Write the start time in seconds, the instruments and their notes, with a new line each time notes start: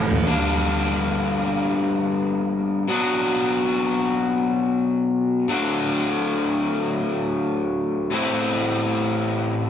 Already playing: picked electric bass F#1, overdriven electric guitar A2 E3 A3 C4 E4
0.10 floor tom
0.25 overdriven electric guitar G2 D3 G3 A#3 D4
2.88 overdriven electric guitar B2 F#3 B3 D4
5.48 overdriven electric guitar D3 F#3 A3 D4
8.11 overdriven electric guitar A2 E3 A3 C4 E4